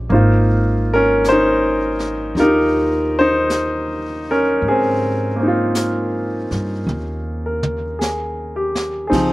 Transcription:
Already playing: G3 C4 C#4 F4
0.09 G#1 A#3 D#4 C5, brush sweep
0.14 F4
0.94 C#4 A#4
1.24 brush sweep, snare, hi-hat pedal
1.29 D#4 C5
1.99 snare
2.35 D#2 D#4, brush sweep, snare
2.39 D#4 F4 G4 A#4
3.19 D#4 C5
3.50 brush sweep, snare, hi-hat pedal
4.31 C#4 A#4
4.62 G#2, brush sweep
4.68 C4 G#4
5.36 A#3 C4
5.43 D#4
5.48 F4
5.75 brush sweep, snare, hi-hat pedal
6.51 G2, snare
6.87 D#2, mid tom
7.46 A#4
7.63 mid tom
7.99 G#4, snare, hi-hat pedal
8.56 G4
8.75 snare
9.07 C4 D#4 G#4
9.12 C#2 F3, brush sweep, kick, snare, ride

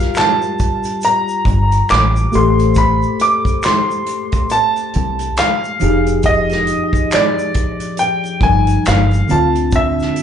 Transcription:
Already playing: G3 F4 G4 A#4 F5
0.01 snare
0.15 A5, finger snap, clap, closed hi-hat, shaker
0.19 snare
0.42 shaker
0.59 kick, closed hi-hat, shaker
0.84 closed hi-hat, shaker
1.01 A#5, closed hi-hat, shaker
1.28 shaker
1.45 G1, kick, closed hi-hat
1.72 closed hi-hat, shaker
1.89 A1 D6, finger snap, snare, clap, closed hi-hat, shaker
2.16 shaker
2.32 A1 A3 G4 A4 C6, closed hi-hat, shaker
2.36 C5
2.59 closed hi-hat, shaker
2.75 B5, kick, closed hi-hat, shaker
3.03 shaker
3.19 D6, closed hi-hat, shaker
3.45 kick, closed hi-hat, shaker
3.63 C6, finger snap, snare, clap, closed hi-hat, shaker
3.91 shaker
4.06 closed hi-hat, shaker
4.32 kick, closed hi-hat, shaker
4.50 A5, closed hi-hat, shaker
4.76 closed hi-hat, shaker
4.94 C2, closed hi-hat
5.19 closed hi-hat, shaker
5.37 F5, finger snap, snare, clap, closed hi-hat, shaker
5.64 shaker
5.80 F1 F3 D#4 G4, closed hi-hat, shaker
5.84 G#4
6.07 closed hi-hat, shaker
6.23 D#5, kick, closed hi-hat, shaker
6.49 snare, closed hi-hat, shaker
6.67 closed hi-hat, shaker
6.93 kick, closed hi-hat, shaker
7.11 D5, finger snap, snare, clap, closed hi-hat, shaker
7.39 shaker
7.54 kick, closed hi-hat, shaker
7.80 closed hi-hat, shaker
7.97 G5, closed hi-hat, shaker
8.24 closed hi-hat, shaker
8.41 G1 F3 G3 D#4 A#4 G#5, kick, closed hi-hat
8.67 closed hi-hat, shaker
8.85 G1 F5, finger snap, snare, clap, closed hi-hat, shaker
9.11 closed hi-hat, shaker
9.28 D3 C4 D4 F4 A5, closed hi-hat, shaker
9.32 D2
9.55 closed hi-hat, shaker
9.72 kick, closed hi-hat, shaker
9.76 E5
10.00 snare, shaker
10.16 closed hi-hat, shaker

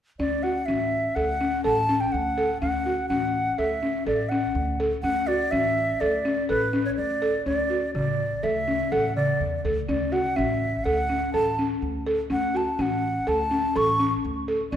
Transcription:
0.19 D2 C#4 D5
0.43 F#4 F#5
0.66 A1 C#4 E5
1.15 D2 A4 F#5
1.41 C#4
1.64 A1 A4 A5
1.89 C#4
2.00 G5
2.12 D2 F#5
2.38 A4
2.61 D2 C#4 F#5
2.86 F#4
3.09 A1 C#4 F#5
3.58 D2 A4 E5
3.83 C#4
4.06 A1 A4 D5
4.29 C#4 F#5
4.55 D2
4.80 A4
5.02 D2 C#4 F#5
5.27 F#4 D5
5.51 A1 C#4 E5
6.00 D2 A4 D5
6.25 C#4
6.49 A1 A4 B4
6.73 C#4
6.85 C#5
6.97 D2 D5
7.22 A4
7.46 D2 C#4 D5
7.70 F#4
7.95 A1 C#3 D5
8.43 D2 A4 E5
8.68 C#4
8.92 A1 A4 F#5
9.16 C#3 D5
9.40 E2
9.65 D2 A4
9.89 D2 C#4 D5
10.12 F#4 F#5
10.36 A1 C#4 E5
10.84 D2 A4 F#5
11.09 C#4
11.33 A1 A4 A5
11.59 C#4
11.82 D2
12.07 A4
12.30 D2 C#4 F#5
12.55 F#4 A5
12.79 A1 C#4 F#5
13.27 D2 A4 A5
13.51 C#4
13.76 A1 A4 C#6
14.00 C#4
14.25 D2
14.48 A4
14.72 D2 C#4 D5

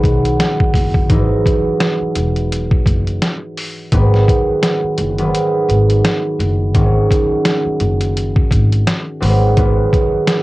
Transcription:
Already playing: G#2 D#3 F#3 B3
0.04 B1, kick, closed hi-hat
0.25 closed hi-hat
0.40 snare, closed hi-hat
0.60 kick
0.74 F#1, kick, open hi-hat
0.94 kick
1.09 G#1 G#2 E3 F#3 D#4, kick, closed hi-hat
1.46 kick, closed hi-hat
1.80 snare, closed hi-hat
2.01 muted upright bass stroke
2.15 E1, closed hi-hat
2.36 closed hi-hat
2.52 closed hi-hat
2.71 kick
2.86 F#1, kick, closed hi-hat
3.07 closed hi-hat
3.22 snare, closed hi-hat
3.58 open hi-hat
3.92 G#1 G#2 D#3 F#3 B3, kick, closed hi-hat
4.14 snare
4.28 kick, closed hi-hat
4.63 snare, closed hi-hat
4.83 muted upright bass stroke
4.98 F#1, closed hi-hat
5.18 G#2 D#3 F#3 B3, closed hi-hat
5.35 closed hi-hat
5.69 G#1, closed hi-hat
5.90 closed hi-hat
6.05 snare, closed hi-hat
6.39 F#1, closed hi-hat
6.74 G#1 G#2 D#3 F#3 C#4, kick, closed hi-hat
7.11 kick, closed hi-hat
7.45 snare, closed hi-hat
7.66 muted upright bass stroke
7.80 F#1, closed hi-hat
8.01 closed hi-hat
8.17 closed hi-hat
8.36 kick
8.51 G#1, kick, closed hi-hat
8.72 closed hi-hat
8.87 snare, closed hi-hat
9.20 G#1 G#2 D#3 F#3 B3, open hi-hat
9.57 G#2 D#3 F#3 B3, kick, closed hi-hat
9.93 kick, closed hi-hat
10.27 snare, closed hi-hat

